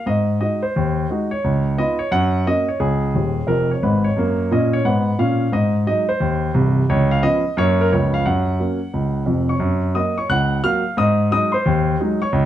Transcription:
0.06 G#2 D#5
0.40 G#3 D#4 F#4 D#5
0.63 C5
0.76 D#2
1.10 G#3 D#4 F#4
1.31 C#5
1.44 C#2
1.77 B3 D#4 F4 D#5
1.99 C#5
2.11 F#2 F#5
2.46 A#3 C#4 F#4 D#5
2.68 C#5
2.80 C#2 G#4
3.14 D#1 D#2
3.47 F1 F2 A#4
3.71 C#5
3.83 G#1 G#2 B4
4.04 C#5
4.16 F#2 A#3
4.51 A#2 C#4 D#5
4.73 C#5
4.85 G#2 B3 F#5
5.19 A#2 C#4 F5
5.52 G#2 D#5
5.87 F#3 G#3 D#4 D#5
6.09 C5
6.20 D#2
6.54 C1 C2
6.89 C#2 C#5
7.11 F5
7.22 F3 B3 C#4 D#5
7.57 F#2 F#3 A#3 C#4 C#5
7.81 A#4
7.92 C#2 F3 B3 C#4 C#5
8.14 F5
8.25 F#2 F#5
8.60 F#3 A#3 C#4
8.93 C#2
9.26 F1 F2
9.49 C#5 C#6
9.60 F#2
9.94 F#3 A#3 F#4 D#5 D#6
10.18 C#5 C#6
10.29 C#2 F#5 F#6
10.63 F#3 A#3 F#4 F5 F6
10.97 G#2 D#5 D#6
11.31 F#3 G#3 D#4 D#5 D#6
11.52 C5 C6
11.66 D#2
12.00 F#3 G#3 D#4
12.22 C#5 C#6
12.32 C#2

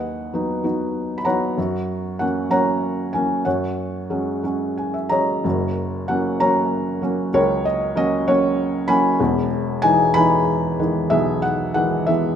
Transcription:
Already playing: D#2 B4 D#5 F#5
0.34 F#3 B3 D#4
0.64 F#3 B3 D#4
1.18 B5
1.25 F#3 B3 D#4 C#5 F#5 A#5
1.58 F#2
2.19 F#3 A#3 C#4 F#5
2.50 F#3 A#3 C#4 C#5 F#5 A#5
3.13 F#3 A#3 C#4 G#5
3.45 F#2 C#5 F#5
4.10 F#3 G#3 C#4
4.43 F#3 G#3 C#4
4.78 G#5
4.94 E5
5.09 F#3 G#3 C#4 C#5 D#5 A#5
5.44 F#1 F#2
6.08 F#3 A#3 C#4 F#5
6.40 F#3 A#3 C#4 C#5 A#5
7.02 F#3 A#3 C#4
7.34 C#2 A#4 C#5
7.65 D#5
7.96 F#3 A#3 C#4 D#5
8.27 F#3 A#3 C#4 C#5
8.88 F#3 A#3 C#4 G#5 B5
9.20 E1 E2
9.82 E3 G#3 D#4 G#5
10.14 E3 G#3 D#4 G#5 B5
10.79 D#3 E3 G#3
11.10 B1 G#4 E5
11.42 F#5
11.74 D#3 E3 G#3 F#5
12.07 E3 G#3 B3 E5

